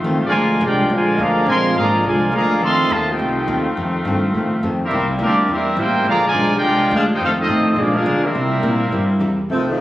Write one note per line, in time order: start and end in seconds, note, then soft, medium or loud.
0.00 0.31 D#3 medium
0.00 0.31 A3 medium
0.00 0.32 C4 medium
0.00 4.74 F4 medium
0.04 0.14 D#2 loud
0.04 0.23 F2 medium
0.04 0.23 D#3 medium
0.04 0.23 A3 medium
0.04 0.24 C4 medium
0.14 0.23 C2 medium
0.23 0.32 A1 medium
0.23 0.60 D3 medium
0.23 0.60 F3 medium
0.23 0.60 G#3 medium
0.23 0.62 F4 medium
0.23 0.62 A#4 medium
0.23 0.61 D5 medium
0.23 0.61 G#5 loud
0.33 0.60 D2 loud
0.33 0.52 A#2 medium
0.33 2.61 D3 medium
0.33 0.52 F3 soft
0.33 2.60 G#3 medium
0.33 0.52 G#3 soft
0.33 2.60 A#3 medium
0.33 0.52 D4 medium
0.60 0.89 C2 loud
0.60 0.80 A#2 medium
0.60 0.80 F3 medium
0.60 0.80 G#3 medium
0.60 0.81 D4 medium
0.60 0.90 F4 medium
0.64 0.90 G#3 medium
0.64 0.90 D4 medium
0.64 0.90 G4 medium
0.64 0.90 A#4 medium
0.64 0.90 D5 medium
0.64 0.90 G5 loud
0.89 1.18 A#1 medium
0.89 1.08 A#2 soft
0.89 1.17 D3 medium
0.89 1.09 F3 soft
0.89 1.18 F3 medium
0.89 1.09 G#3 medium
0.89 1.19 G#3 medium
0.89 1.09 D4 medium
0.93 1.21 F4 medium
0.93 1.21 A#4 medium
0.93 1.20 D5 medium
0.93 1.20 G#5 medium
1.18 1.46 D2 medium
1.18 1.38 A#2 medium
1.18 1.47 D3 medium
1.18 1.46 F3 medium
1.18 1.38 F3 medium
1.18 1.38 G#3 medium
1.18 1.47 A#3 loud
1.18 1.38 D4 medium
1.18 1.48 G#4 medium
1.18 1.49 D5 medium
1.18 1.47 F5 medium
1.18 1.49 A#5 loud
1.46 1.75 A#1 loud
1.46 1.66 A#2 medium
1.46 1.66 F3 medium
1.46 1.74 F3 medium
1.46 1.74 G#3 medium
1.46 1.66 G#3 soft
1.46 1.74 C4 loud
1.46 1.66 D4 medium
1.46 1.75 A#4 loud
1.46 1.75 F5 medium
1.46 1.75 G#5 loud
1.46 1.75 C6 loud
1.75 2.03 G#1 loud
1.75 1.95 A#2 medium
1.75 2.04 D3 medium
1.75 1.95 F3 medium
1.75 2.03 F3 loud
1.75 1.95 G#3 medium
1.75 2.04 A#3 medium
1.75 1.95 D4 medium
1.75 2.04 G#4 loud
1.75 2.03 D5 medium
1.75 2.03 F5 medium
1.75 2.03 A#5 loud
2.04 2.32 C2 loud
2.04 2.23 A#2 soft
2.04 2.31 D3 medium
2.04 2.23 F3 medium
2.04 2.31 F3 medium
2.04 2.32 G#3 medium
2.04 2.24 G#3 medium
2.04 2.24 D4 medium
2.04 2.32 F4 medium
2.04 2.32 A#4 medium
2.04 2.32 D5 medium
2.04 2.32 G#5 medium
2.31 2.61 D2 loud
2.31 2.51 A#2 medium
2.31 2.60 D3 medium
2.31 2.60 F3 medium
2.31 2.52 F3 medium
2.31 2.52 G#3 medium
2.31 2.60 A#3 medium
2.31 2.52 D4 medium
2.31 2.61 G#4 medium
2.31 2.60 D5 medium
2.31 2.60 F5 medium
2.31 2.61 A#5 loud
2.61 2.80 F2 soft
2.61 2.90 F2 medium
2.61 2.80 D#3 medium
2.61 2.92 D#3 medium
2.61 2.80 A3 medium
2.61 2.91 A3 medium
2.61 2.81 C4 medium
2.61 2.91 C4 medium
2.61 2.92 A4 medium
2.61 2.89 D#5 loud
2.61 2.92 F5 medium
2.61 2.92 C6 loud
2.65 4.74 D#3 medium
2.65 4.74 A3 medium
2.65 4.74 C4 medium
2.90 3.18 D#2 loud
2.90 3.09 F2 medium
2.90 3.09 C3 medium
2.90 3.10 D#3 medium
2.90 3.10 A3 medium
2.90 3.09 A3 medium
2.90 3.10 C4 medium
2.90 3.08 F4 medium
2.90 3.08 C5 medium
2.90 3.08 D#5 loud
2.90 3.08 A5 loud
3.09 3.67 C4 medium
3.09 3.67 D#4 medium
3.09 3.66 F4 medium
3.09 3.67 G4 medium
3.09 3.66 C5 medium
3.09 3.66 D#5 medium
3.09 3.66 G5 loud
3.18 3.47 C2 loud
3.18 3.37 F2 soft
3.18 3.38 D#3 soft
3.18 3.38 A3 medium
3.18 3.38 C4 medium
3.47 3.76 D#2 loud
3.47 3.66 F2 medium
3.47 3.66 D#3 medium
3.47 3.67 A3 medium
3.47 3.67 C4 medium
3.77 4.04 F2 loud
3.77 3.96 F2 medium
3.77 3.96 D#3 medium
3.77 3.96 A3 medium
3.77 3.97 C4 medium
4.05 4.24 F2 medium
4.05 4.33 G2 loud
4.05 4.25 D#3 medium
4.05 4.25 A3 medium
4.05 4.25 C4 medium
4.34 4.53 F2 medium
4.34 4.62 A2 medium
4.34 4.54 D#3 medium
4.34 4.54 A3 medium
4.34 4.54 C4 medium
4.63 4.81 F2 medium
4.63 4.90 F2 loud
4.63 4.82 D#3 medium
4.63 4.82 A3 medium
4.63 4.82 C4 medium
4.83 5.08 G3 medium
4.83 5.09 A#3 medium
4.83 5.08 C4 medium
4.83 5.09 E4 medium
4.83 5.08 G4 medium
4.83 5.09 A#4 medium
4.83 5.08 E5 medium
4.91 5.18 C2 loud
4.91 5.10 C3 medium
4.91 6.05 C3 medium
4.91 5.11 G3 medium
4.91 6.05 G3 medium
4.91 7.19 A#3 medium
4.91 5.11 A#3 soft
4.91 6.05 E4 medium
4.91 5.11 E4 medium
5.19 5.47 D2 loud
5.19 5.38 C3 medium
5.19 5.38 G3 medium
5.19 5.48 G3 medium
5.19 5.39 A#3 medium
5.19 5.39 E4 medium
5.19 5.48 G4 medium
5.23 5.48 A#3 medium
5.23 5.48 C4 medium
5.23 5.48 D4 medium
5.23 5.48 A#4 medium
5.23 5.49 D5 loud
5.47 5.76 E2 medium
5.47 5.67 C3 soft
5.47 5.68 G3 soft
5.47 5.68 A#3 medium
5.47 5.76 C4 medium
5.47 5.68 E4 soft
5.47 5.76 G4 medium
5.47 5.76 A#4 medium
5.47 5.76 E5 loud
5.51 5.77 G3 medium
5.51 5.77 A#3 medium
5.51 5.77 E4 medium
5.76 6.05 A1 loud
5.76 5.95 C3 medium
5.76 5.96 G3 medium
5.76 5.96 A#3 medium
5.76 6.05 A#3 medium
5.76 5.96 E4 medium
5.76 6.07 E4 medium
5.76 6.07 G4 medium
5.76 6.07 A#4 medium
5.76 6.07 C5 medium
5.76 6.07 G5 loud
6.05 6.33 A#1 medium
6.05 6.24 A#2 soft
6.05 7.19 D3 medium
6.05 6.22 D3 medium
6.05 6.24 F3 medium
6.05 6.23 F3 medium
6.05 7.19 G#3 medium
6.05 6.25 G#3 medium
6.05 6.23 A#3 loud
6.05 6.25 D4 medium
6.05 7.76 F4 medium
6.05 6.24 G#4 loud
6.05 6.24 D5 loud
6.09 6.24 F5 loud
6.09 6.24 A#5 loud
6.25 6.51 D3 medium
6.25 6.51 F3 medium
6.25 6.51 G#3 medium
6.25 6.52 F4 loud
6.25 6.52 A#4 loud
6.25 6.52 D5 loud
6.25 6.52 G#5 loud
6.35 6.62 B1 loud
6.35 6.53 A#2 medium
6.35 6.54 F3 medium
6.35 6.54 G#3 medium
6.35 6.54 D4 medium
6.55 6.93 G#3 loud
6.55 6.93 D4 medium
6.55 6.94 F4 loud
6.55 6.93 G4 medium
6.55 6.93 A#4 loud
6.55 6.93 D5 medium
6.55 6.94 G5 loud
6.62 6.91 C2 medium
6.62 6.81 A#2 medium
6.62 6.82 F3 medium
6.62 6.82 G#3 soft
6.62 6.82 D4 medium
6.90 7.19 D2 loud
6.90 7.10 A#2 medium
6.90 7.11 F3 medium
6.90 7.11 G#3 medium
6.90 7.02 G#3 medium
6.90 7.11 D4 medium
6.90 7.02 D4 medium
6.90 7.02 F4 medium
6.90 7.02 G#4 medium
6.95 7.02 A#4 medium
6.95 7.02 F5 medium
7.12 7.21 D#4 medium
7.12 7.21 G4 medium
7.12 7.21 G#4 medium
7.12 7.22 C5 medium
7.12 7.22 G5 loud
7.19 7.39 F2 soft
7.19 7.48 F2 loud
7.19 7.77 D#3 medium
7.19 7.40 D#3 medium
7.19 7.77 A3 medium
7.19 7.40 A3 medium
7.19 7.77 C4 medium
7.19 7.40 C4 medium
7.19 7.30 D#4 medium
7.19 7.30 A4 medium
7.19 7.30 C5 medium
7.19 7.30 F5 loud
7.23 7.31 A3 medium
7.23 7.31 C4 medium
7.23 7.31 F4 medium
7.39 7.65 A3 medium
7.39 7.66 C4 medium
7.39 7.66 D#4 medium
7.39 7.66 F4 loud
7.39 7.66 A4 medium
7.39 7.66 D#5 loud
7.49 7.68 F2 medium
7.49 7.76 A2 loud
7.49 7.68 D#3 medium
7.49 7.68 A3 medium
7.49 7.68 C4 medium
7.67 7.78 A3 medium
7.67 7.77 C4 medium
7.67 7.78 C4 medium
7.67 7.78 D#4 medium
7.67 7.78 F4 medium
7.67 7.78 A4 medium
7.67 7.78 D#5 medium
7.76 8.05 A#2 medium
7.76 7.96 A#2 soft
7.76 8.34 D3 medium
7.76 7.96 F3 medium
7.76 8.34 G#3 medium
7.76 7.95 G#3 medium
7.76 7.97 G#3 medium
7.76 9.48 A#3 medium
7.76 7.96 A#3 medium
7.76 7.94 D4 medium
7.76 7.97 D4 soft
7.76 8.35 F4 medium
7.76 7.96 F4 medium
7.76 7.93 G#4 medium
7.76 7.96 D5 loud
7.94 8.24 G#3 medium
7.94 8.24 D4 medium
7.94 8.24 F4 medium
7.94 8.24 G#4 medium
7.94 8.23 A#4 medium
7.94 8.24 F5 medium
8.05 8.25 A#2 medium
8.05 8.34 D3 loud
8.05 8.25 F3 medium
8.05 8.25 G#3 medium
8.05 8.25 D4 medium
8.23 9.21 G3 medium
8.23 9.21 A#3 medium
8.23 9.21 C4 medium
8.23 9.21 E4 medium
8.23 9.22 G4 medium
8.23 9.21 A#4 medium
8.23 9.21 E5 loud
8.33 9.48 C3 medium
8.33 8.53 C3 soft
8.33 8.62 C3 loud
8.33 9.49 G3 medium
8.33 8.54 G3 medium
8.33 8.55 A#3 soft
8.33 9.48 E4 medium
8.33 8.55 E4 medium
8.62 8.91 A#2 loud
8.62 8.82 C3 medium
8.62 8.82 G3 medium
8.62 8.82 A#3 medium
8.62 8.82 E4 medium
8.91 9.20 G2 medium
8.91 9.11 C3 medium
8.91 9.11 G3 medium
8.91 9.11 A#3 medium
8.91 9.12 E4 medium
9.20 9.49 E2 loud
9.20 9.39 C3 medium
9.20 9.40 G3 medium
9.20 9.40 A#3 medium
9.20 9.40 E4 medium
9.49 9.77 C2 medium
9.49 9.68 F2 soft
9.49 9.68 D#3 soft
9.49 9.67 D#3 medium
9.49 9.67 F3 medium
9.49 9.69 A3 soft
9.49 9.67 A3 medium
9.49 9.69 C4 soft
9.49 9.67 C4 medium
9.69 9.78 C3 medium
9.69 9.78 D#3 medium
9.69 9.79 F3 medium
9.69 9.79 A3 medium
9.77 9.81 F2 medium